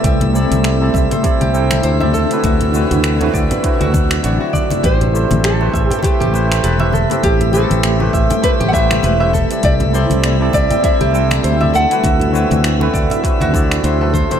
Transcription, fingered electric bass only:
X:1
M:4/4
L:1/16
Q:"Swing 16ths" 1/4=100
K:Ador
V:1 name="Fingered electric bass" clef=bass
C,,3 C,,3 C,, z2 C,,3 D,,3 z | D,,3 D,,3 D,, z2 D,,3 A,,, z3 | A,,,3 A,,,3 A,,, z2 A,,,3 E,,,3 z | A,,,3 A,,,3 A,,, z2 A,,,3 E,,,3 z |
C,,3 C,,3 C,, z2 C,,3 D,,3 z | D,,3 D,,3 D,, z2 D,,3 D,,3 z |]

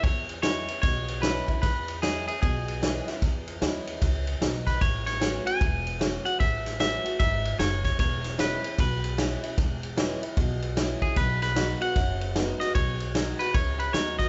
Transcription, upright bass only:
X:1
M:4/4
L:1/8
Q:"Swing" 1/4=151
K:E
V:1 name="Upright bass" clef=bass
E,,4 B,,,4 | E,,4 B,,,4 | E,,2 D,,2 C,,2 B,,,2 | A,,,4 E,,,4 |
A,,,4 G,,,2 F,,,2 | E,,,4 B,,,4 | E,,,4 B,,,4 | B,,,4 F,,,4 |
B,,,4 C,,2 D,,2 |]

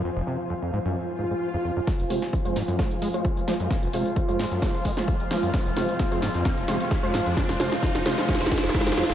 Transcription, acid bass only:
X:1
M:4/4
L:1/16
Q:1/4=131
K:Fm
V:1 name="Acid bass" clef=bass
F,, F,,, C, z F,, F,, A,, _G,, F,, z A,, A,, z F,, F,, G,, | F,, F,,, C, z F,, F,, A,, _G,, F,, z A, z2 F,,, F, G,, | z F,,, C, z F,, F,, A,, _G,, F,, z A, z2 F,,, F, G,, | F,, F,,, C, z F,, F,, A,, F,, F,, F,,, C, z F,, F,, A,, F,, |
F,, F,,, C, z F,, F,,, C, z F,, F,,, F,, F,,, F,, F,,, F,, F,,, |]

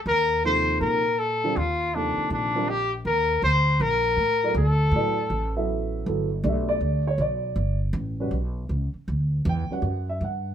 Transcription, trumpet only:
X:1
M:4/4
L:1/8
Q:"Swing" 1/4=159
K:Eblyd
V:1 name="Trumpet"
B2 c2 B2 A2 | F2 D2 D2 G z | B2 c2 B4 | A6 z2 |
[K:Glyd] z8 | z8 | z8 |]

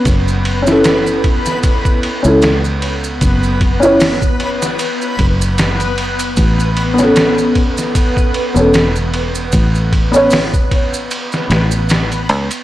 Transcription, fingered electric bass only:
X:1
M:4/4
L:1/16
Q:"Swing 16ths" 1/4=76
K:F#m
V:1 name="Fingered electric bass" clef=bass
F,,,8 z3 C,,4- C,, | F,,,8 z2 F,,,6 | A,,,8 z3 E,,,4- E,,, | A,,,8 z2 A,,,4 C,, z |]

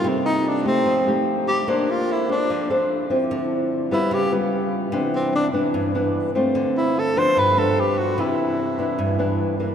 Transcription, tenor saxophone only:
X:1
M:4/4
L:1/8
Q:1/4=148
K:C
V:1 name="Tenor saxophone"
C _E D C3 z G | D F E D3 z2 | z3 E G z3 | z C D z4 z |
z E A c B A G ^F | E6 z2 |]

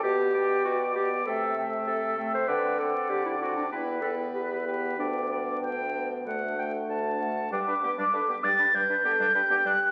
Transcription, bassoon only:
X:1
M:4/4
L:1/16
Q:1/4=98
K:G
V:1 name="Bassoon" clef=bass
B,,4 B,,4 C,4 C,4 | D,4 D,4 E,,4 E,,4 | D,,4 D,,4 D,,4 D,,4 | G,, G,, G,, G,, G,, G,, G,, G,, G,, G,, G,, G,, G,, G,, G,, z |]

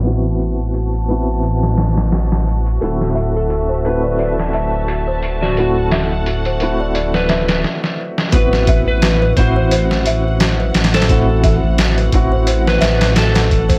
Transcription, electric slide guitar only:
X:1
M:4/4
L:1/16
Q:"Swing 16ths" 1/4=87
K:Ador
V:1 name="Electric slide guitar"
z16 | A3 A3 B3 z6 F- | F3 z6 B3 z4 | B3 B3 c3 z6 A- |
A3 z6 B3 A4 |]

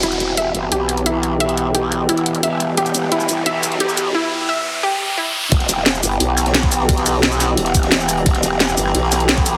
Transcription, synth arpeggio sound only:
X:1
M:4/4
L:1/16
Q:1/4=175
K:Em
V:1 name="Synth arpeggio sound"
E z3 e z3 G2 z2 E z3 | e z3 G2 z2 E z3 e z3 | G2 z2 E z3 e z3 G2 z2 | E z3 e z3 G2 z2 E z3 |
z16 | z16 | z16 |]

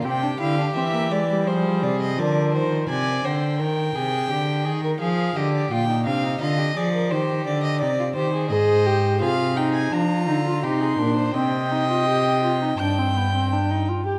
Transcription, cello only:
X:1
M:4/4
L:1/8
Q:1/4=85
K:Cphr
V:1 name="Cello" clef=bass
C, =D, =E,2 F, C, D, _E, | C, =D, E, C, D, E, F, D, | B,, C, =D, F, E, D, C, E, | [K:Cm] A,,2 C,2 F, D, C, B,, |
C,4 G,,3 z |]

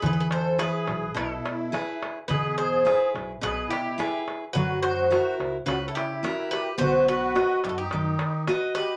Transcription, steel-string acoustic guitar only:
X:1
M:4/4
L:1/8
Q:1/4=107
K:none
V:1 name="Steel-string acoustic guitar"
E,2 [E^GB]2 B,,2 [EGB]2 | B,,2 [E^GB]2 B,,2 [EGB]2 | ^F,2 [E^F^A]2 ^C,2 [EFA]2 | B,2 [^FB^d]2 ^D,2 [FBd]2 |]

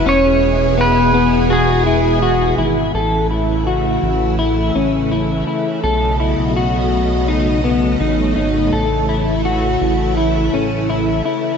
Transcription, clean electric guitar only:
X:1
M:4/4
L:1/8
Q:1/4=83
K:Emix
V:1 name="Clean electric guitar"
C2 B, B, F E F E | [K:Alyd] A E F2 E C E E | A E F2 D B, D D | A E F2 E C E E |]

